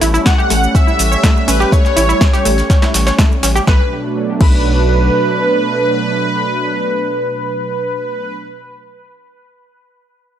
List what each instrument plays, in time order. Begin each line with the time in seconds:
Already playing: analog synth pad G3 A3 C#4
0.02 sub bass A1, synth pluck E4, snare, closed hi-hat, open hi-hat, shaker
0.14 synth pluck E4, closed hi-hat, shaker
0.26 supersaw synth F#5, kick, snare, closed hi-hat, shaker
0.39 synth pluck G4, shaker
0.50 sub bass A1, synth pluck A3, closed hi-hat, open hi-hat, shaker
0.64 shaker
0.75 synth pluck C#4, supersaw synth E5, kick, closed hi-hat, shaker
0.87 synth pluck E4, shaker
0.99 sub bass A1, snare, closed hi-hat, open hi-hat, shaker
1.12 synth pluck C#5, shaker
1.23 synth pluck A3, kick, snare, closed hi-hat, shaker
1.37 shaker
1.48 sub bass A1, synth pluck C#4, supersaw synth B4, closed hi-hat, open hi-hat, shaker
1.60 synth pluck G4, snare, shaker
1.72 synth pluck A3, supersaw synth C#5, kick, closed hi-hat, shaker
1.85 snare, shaker
1.97 sub bass A1, synth pluck E4, closed hi-hat, open hi-hat, shaker
2.09 synth pluck E4, closed hi-hat, shaker
2.21 kick, snare, closed hi-hat, shaker
2.34 synth pluck G4, closed hi-hat, shaker
2.45 sub bass A1, synth pluck A3, closed hi-hat, open hi-hat, shaker
2.58 snare, closed hi-hat, shaker
2.70 synth pluck C#4, kick, snare, closed hi-hat, shaker
2.82 synth pluck E4, snare, closed hi-hat, shaker
2.94 sub bass A1, snare, closed hi-hat, open hi-hat, shaker
3.07 synth pluck C#5, snare, closed hi-hat, shaker
3.19 synth pluck A3, kick, snare, shaker
3.32 shaker
3.43 sub bass A1, synth pluck C#4, snare, closed hi-hat, open hi-hat, shaker
3.56 synth pluck G4, snare, shaker
3.67 sub bass B1, analog synth pad B2 F#3 A3 D4, synth pluck A3, supersaw synth B4, kick, snare
4.41 sub bass B1, synth pluck A3, supersaw synth B4, kick, crash